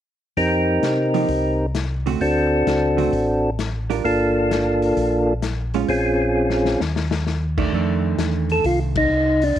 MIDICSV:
0, 0, Header, 1, 5, 480
1, 0, Start_track
1, 0, Tempo, 459770
1, 381, Time_signature, 4, 2, 24, 8
1, 10015, End_track
2, 0, Start_track
2, 0, Title_t, "Tonewheel organ"
2, 0, Program_c, 0, 16
2, 388, Note_on_c, 0, 60, 44
2, 388, Note_on_c, 0, 67, 38
2, 390, Note_on_c, 0, 63, 39
2, 392, Note_on_c, 0, 70, 45
2, 1735, Note_off_c, 0, 60, 0
2, 1735, Note_off_c, 0, 67, 0
2, 1736, Note_off_c, 0, 63, 0
2, 1737, Note_off_c, 0, 70, 0
2, 2307, Note_on_c, 0, 60, 52
2, 2310, Note_on_c, 0, 62, 49
2, 2311, Note_on_c, 0, 66, 43
2, 2315, Note_on_c, 0, 69, 53
2, 3656, Note_off_c, 0, 60, 0
2, 3657, Note_off_c, 0, 62, 0
2, 3658, Note_off_c, 0, 66, 0
2, 3660, Note_off_c, 0, 69, 0
2, 4221, Note_on_c, 0, 58, 49
2, 4229, Note_on_c, 0, 62, 47
2, 4229, Note_on_c, 0, 65, 41
2, 4232, Note_on_c, 0, 69, 54
2, 5573, Note_off_c, 0, 58, 0
2, 5577, Note_off_c, 0, 62, 0
2, 5577, Note_off_c, 0, 65, 0
2, 5579, Note_off_c, 0, 69, 0
2, 6144, Note_on_c, 0, 60, 48
2, 6153, Note_on_c, 0, 61, 44
2, 6154, Note_on_c, 0, 65, 46
2, 6155, Note_on_c, 0, 68, 51
2, 7106, Note_off_c, 0, 60, 0
2, 7110, Note_off_c, 0, 61, 0
2, 7111, Note_off_c, 0, 65, 0
2, 7111, Note_off_c, 0, 68, 0
2, 8893, Note_on_c, 0, 69, 94
2, 9039, Note_off_c, 0, 69, 0
2, 9039, Note_on_c, 0, 65, 87
2, 9182, Note_off_c, 0, 65, 0
2, 9369, Note_on_c, 0, 63, 96
2, 9851, Note_off_c, 0, 63, 0
2, 9852, Note_on_c, 0, 62, 79
2, 10015, Note_off_c, 0, 62, 0
2, 10015, End_track
3, 0, Start_track
3, 0, Title_t, "Hollow-body jazz guitar"
3, 0, Program_c, 1, 26
3, 1190, Note_on_c, 1, 53, 51
3, 1192, Note_on_c, 1, 58, 45
3, 1199, Note_on_c, 1, 63, 52
3, 1206, Note_on_c, 1, 67, 50
3, 1328, Note_off_c, 1, 53, 0
3, 1329, Note_off_c, 1, 58, 0
3, 1333, Note_off_c, 1, 63, 0
3, 1336, Note_off_c, 1, 67, 0
3, 2150, Note_on_c, 1, 50, 45
3, 2160, Note_on_c, 1, 57, 47
3, 2160, Note_on_c, 1, 60, 48
3, 2161, Note_on_c, 1, 66, 51
3, 2289, Note_off_c, 1, 50, 0
3, 2294, Note_off_c, 1, 57, 0
3, 2294, Note_off_c, 1, 60, 0
3, 2295, Note_off_c, 1, 66, 0
3, 3102, Note_on_c, 1, 50, 43
3, 3112, Note_on_c, 1, 57, 46
3, 3112, Note_on_c, 1, 60, 47
3, 3116, Note_on_c, 1, 66, 54
3, 3246, Note_off_c, 1, 50, 0
3, 3250, Note_off_c, 1, 57, 0
3, 3251, Note_off_c, 1, 60, 0
3, 3253, Note_off_c, 1, 66, 0
3, 4068, Note_on_c, 1, 55, 47
3, 4070, Note_on_c, 1, 62, 49
3, 4075, Note_on_c, 1, 65, 47
3, 4078, Note_on_c, 1, 70, 49
3, 4209, Note_off_c, 1, 55, 0
3, 4210, Note_off_c, 1, 62, 0
3, 4213, Note_off_c, 1, 65, 0
3, 4214, Note_off_c, 1, 70, 0
3, 5997, Note_on_c, 1, 56, 58
3, 6000, Note_on_c, 1, 61, 59
3, 6009, Note_on_c, 1, 65, 58
3, 6134, Note_off_c, 1, 56, 0
3, 6136, Note_off_c, 1, 61, 0
3, 6140, Note_off_c, 1, 65, 0
3, 7910, Note_on_c, 1, 51, 56
3, 7914, Note_on_c, 1, 57, 53
3, 7919, Note_on_c, 1, 62, 59
3, 8049, Note_off_c, 1, 51, 0
3, 8052, Note_off_c, 1, 57, 0
3, 8054, Note_off_c, 1, 62, 0
3, 8069, Note_on_c, 1, 51, 51
3, 8080, Note_on_c, 1, 57, 54
3, 8084, Note_on_c, 1, 62, 63
3, 9412, Note_off_c, 1, 51, 0
3, 9417, Note_off_c, 1, 57, 0
3, 9419, Note_off_c, 1, 62, 0
3, 10015, End_track
4, 0, Start_track
4, 0, Title_t, "Tonewheel organ"
4, 0, Program_c, 2, 16
4, 384, Note_on_c, 2, 41, 70
4, 830, Note_off_c, 2, 41, 0
4, 858, Note_on_c, 2, 48, 68
4, 1307, Note_off_c, 2, 48, 0
4, 1340, Note_on_c, 2, 36, 68
4, 2262, Note_off_c, 2, 36, 0
4, 2302, Note_on_c, 2, 38, 74
4, 2750, Note_off_c, 2, 38, 0
4, 2778, Note_on_c, 2, 37, 73
4, 3229, Note_off_c, 2, 37, 0
4, 3262, Note_on_c, 2, 33, 68
4, 4184, Note_off_c, 2, 33, 0
4, 4224, Note_on_c, 2, 31, 76
4, 5145, Note_off_c, 2, 31, 0
4, 5185, Note_on_c, 2, 34, 78
4, 6105, Note_off_c, 2, 34, 0
4, 6143, Note_on_c, 2, 34, 74
4, 7063, Note_off_c, 2, 34, 0
4, 7098, Note_on_c, 2, 39, 74
4, 8020, Note_off_c, 2, 39, 0
4, 8066, Note_on_c, 2, 41, 87
4, 8512, Note_off_c, 2, 41, 0
4, 8532, Note_on_c, 2, 40, 73
4, 8983, Note_off_c, 2, 40, 0
4, 9024, Note_on_c, 2, 36, 79
4, 9469, Note_off_c, 2, 36, 0
4, 9495, Note_on_c, 2, 36, 76
4, 9943, Note_off_c, 2, 36, 0
4, 9982, Note_on_c, 2, 34, 81
4, 10015, Note_off_c, 2, 34, 0
4, 10015, End_track
5, 0, Start_track
5, 0, Title_t, "Drums"
5, 386, Note_on_c, 9, 36, 29
5, 389, Note_on_c, 9, 46, 36
5, 491, Note_off_c, 9, 36, 0
5, 493, Note_off_c, 9, 46, 0
5, 866, Note_on_c, 9, 38, 51
5, 866, Note_on_c, 9, 42, 43
5, 970, Note_off_c, 9, 38, 0
5, 970, Note_off_c, 9, 42, 0
5, 1192, Note_on_c, 9, 46, 31
5, 1297, Note_off_c, 9, 46, 0
5, 1341, Note_on_c, 9, 46, 37
5, 1345, Note_on_c, 9, 36, 29
5, 1446, Note_off_c, 9, 46, 0
5, 1449, Note_off_c, 9, 36, 0
5, 1824, Note_on_c, 9, 38, 55
5, 1824, Note_on_c, 9, 42, 44
5, 1928, Note_off_c, 9, 38, 0
5, 1928, Note_off_c, 9, 42, 0
5, 2155, Note_on_c, 9, 46, 30
5, 2260, Note_off_c, 9, 46, 0
5, 2305, Note_on_c, 9, 36, 27
5, 2307, Note_on_c, 9, 46, 36
5, 2410, Note_off_c, 9, 36, 0
5, 2411, Note_off_c, 9, 46, 0
5, 2788, Note_on_c, 9, 38, 55
5, 2788, Note_on_c, 9, 42, 43
5, 2892, Note_off_c, 9, 38, 0
5, 2892, Note_off_c, 9, 42, 0
5, 3113, Note_on_c, 9, 46, 30
5, 3218, Note_off_c, 9, 46, 0
5, 3265, Note_on_c, 9, 36, 28
5, 3266, Note_on_c, 9, 46, 34
5, 3370, Note_off_c, 9, 36, 0
5, 3371, Note_off_c, 9, 46, 0
5, 3747, Note_on_c, 9, 38, 54
5, 3747, Note_on_c, 9, 42, 42
5, 3851, Note_off_c, 9, 38, 0
5, 3851, Note_off_c, 9, 42, 0
5, 4075, Note_on_c, 9, 46, 32
5, 4179, Note_off_c, 9, 46, 0
5, 4226, Note_on_c, 9, 36, 28
5, 4228, Note_on_c, 9, 46, 37
5, 4330, Note_off_c, 9, 36, 0
5, 4332, Note_off_c, 9, 46, 0
5, 4711, Note_on_c, 9, 38, 57
5, 4711, Note_on_c, 9, 42, 48
5, 4815, Note_off_c, 9, 38, 0
5, 4815, Note_off_c, 9, 42, 0
5, 5034, Note_on_c, 9, 46, 31
5, 5138, Note_off_c, 9, 46, 0
5, 5187, Note_on_c, 9, 36, 30
5, 5187, Note_on_c, 9, 46, 38
5, 5291, Note_off_c, 9, 36, 0
5, 5292, Note_off_c, 9, 46, 0
5, 5663, Note_on_c, 9, 38, 57
5, 5663, Note_on_c, 9, 42, 46
5, 5768, Note_off_c, 9, 38, 0
5, 5768, Note_off_c, 9, 42, 0
5, 5990, Note_on_c, 9, 46, 28
5, 6095, Note_off_c, 9, 46, 0
5, 6145, Note_on_c, 9, 36, 28
5, 6145, Note_on_c, 9, 46, 38
5, 6249, Note_off_c, 9, 36, 0
5, 6249, Note_off_c, 9, 46, 0
5, 6786, Note_on_c, 9, 38, 36
5, 6891, Note_off_c, 9, 38, 0
5, 6947, Note_on_c, 9, 38, 47
5, 7051, Note_off_c, 9, 38, 0
5, 7105, Note_on_c, 9, 38, 53
5, 7210, Note_off_c, 9, 38, 0
5, 7268, Note_on_c, 9, 38, 56
5, 7373, Note_off_c, 9, 38, 0
5, 7424, Note_on_c, 9, 38, 71
5, 7528, Note_off_c, 9, 38, 0
5, 7585, Note_on_c, 9, 38, 49
5, 7690, Note_off_c, 9, 38, 0
5, 7910, Note_on_c, 9, 49, 57
5, 7911, Note_on_c, 9, 36, 67
5, 8014, Note_off_c, 9, 49, 0
5, 8016, Note_off_c, 9, 36, 0
5, 8066, Note_on_c, 9, 36, 29
5, 8170, Note_off_c, 9, 36, 0
5, 8546, Note_on_c, 9, 38, 64
5, 8546, Note_on_c, 9, 42, 49
5, 8650, Note_off_c, 9, 38, 0
5, 8650, Note_off_c, 9, 42, 0
5, 8869, Note_on_c, 9, 46, 35
5, 8974, Note_off_c, 9, 46, 0
5, 9024, Note_on_c, 9, 46, 44
5, 9025, Note_on_c, 9, 36, 33
5, 9129, Note_off_c, 9, 36, 0
5, 9129, Note_off_c, 9, 46, 0
5, 9351, Note_on_c, 9, 36, 85
5, 9351, Note_on_c, 9, 51, 73
5, 9455, Note_off_c, 9, 51, 0
5, 9456, Note_off_c, 9, 36, 0
5, 9830, Note_on_c, 9, 46, 37
5, 9935, Note_off_c, 9, 46, 0
5, 9983, Note_on_c, 9, 36, 33
5, 10015, Note_off_c, 9, 36, 0
5, 10015, End_track
0, 0, End_of_file